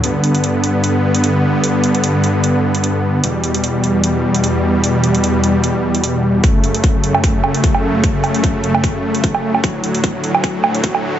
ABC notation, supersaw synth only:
X:1
M:4/4
L:1/8
Q:"Swing 16ths" 1/4=150
K:F#phr
V:1 name="Supersaw synth" clef=bass
[G,,D,B,]8- | [G,,D,B,]8 | [E,,B,,G,]8- | [E,,B,,G,]8 |
[F,,C,A,]8- | [F,,C,A,]8 | [D,,A,,F,]8 |]